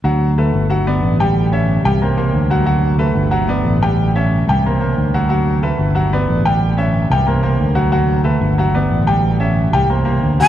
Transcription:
<<
  \new Staff \with { instrumentName = "Flute" } { \time 4/4 \key g \lydian \tempo 4 = 183 r1 | r1 | r1 | r1 |
r1 | r1 | r1 | r2. r8 a''8 | }
  \new Staff \with { instrumentName = "Upright piano" } { \time 4/4 \key g \lydian <fis fis' fis''>4 <a a' b'>4 <fis fis' fis''>8 <b b' d''>4 <g g' g''>8~ | <g g' g''>8 <cis' cis'' e''>4 <g g' g''>8 <ais ais' c''>8 <ais ais' c''>4 <fis fis' fis''>8 | <fis fis' fis''>4 <a a' b'>4 <fis fis' fis''>8 <b b' d''>4 <g g' g''>8~ | <g g' g''>8 <cis' cis'' e''>4 <g g' g''>8 <ais ais' c''>8 <ais ais' c''>4 <fis fis' fis''>8 |
<fis fis' fis''>4 <a a' b'>4 <fis fis' fis''>8 <b b' d''>4 <g g' g''>8~ | <g g' g''>8 <cis' cis'' e''>4 <g g' g''>8 <ais ais' c''>8 <ais ais' c''>4 <fis fis' fis''>8 | <fis fis' fis''>4 <a a' b'>4 <fis fis' fis''>8 <b b' d''>4 <g g' g''>8~ | <g g' g''>8 <cis' cis'' e''>4 <g g' g''>8 <bes bes' c''>8 <bes bes' c''>4 <fis fis' fis''>8 | }
  \new Staff \with { instrumentName = "Fingered electric bass" } { \clef bass \time 4/4 \key g \lydian d,4. g,,4. a,,4~ | a,,4. c,4. d,4~ | d,4. g,,4. a,,4~ | a,,4. c,4. d,4~ |
d,4. g,,4. a,,4~ | a,,4. c,4. d,4~ | d,4. g,,4. a,,4~ | a,,4. c,4. d,4 | }
>>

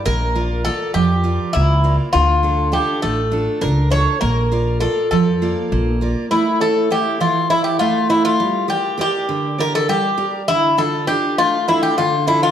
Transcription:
<<
  \new Staff \with { instrumentName = "Bouzouki" } { \time 7/8 \tempo 4 = 101 bes'4 a'8 g'4 e'8. r16 | f'4 g'8 a'4 bes'8 cis''8 | bes'4 a'8 a'4. r8 | e'8 a'8 g'8 f'8 e'16 g'16 f'8 e'16 f'16~ |
f'8 g'8 g'4 bes'16 a'16 g'8. r16 | e'8 a'8 g'8 f'8 e'16 g'16 f'8 e'16 f'16 | }
  \new Staff \with { instrumentName = "Steel-string acoustic guitar" } { \time 7/8 bes8 <f' bes' d''>8 <f' bes' d''>8 f8 <f' bes' d''>8 bes8 <f' bes' d''>8 | d8 <d' f' a'>8 <d' f' a'>8 a8 <d' f' a'>8 d'8 <d' f' a'>8 | bes8 <f' bes' d''>8 <f' bes' d''>8 f8 <bes f' d''>8 bes8 <f' bes' d''>8 | a8 <e' a' cis''>8 <e' a' cis''>8 e8 <e' a' cis''>8 a8 <e' a' cis''>8 |
g8 <g' bes' d''>8 <g' bes' d''>8 d8 <g' bes' d''>8 g8 <g' bes' d''>8 | d8 <d' f' a'>8 <d' f' a'>8 a8 <d' f' a'>8 d8 <d' f' a'>8 | }
  \new Staff \with { instrumentName = "Upright bass" } { \clef bass \time 7/8 bes,,4. f,4 cis,4 | d,4. a,,4 cis,4 | bes,,4. f,4 bes,,4 | r2. r8 |
r2. r8 | r2. r8 | }
>>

